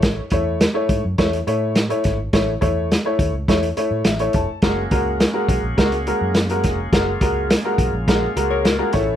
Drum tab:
HH |x-x-x-x-xxx-xxx-|x-x-x-x-xxx-xxx-|x-x-x-x-xxx-xxx-|x-x-x-x-x-x-x-x-|
SD |o---o---o---o-o-|o---o---o---o---|o---o---o---o-o-|o---o---o---o-o-|
BD |o-o---o-o-----o-|o-o---o-o-----o-|o-o---o-o-----o-|o-o---o-o-----o-|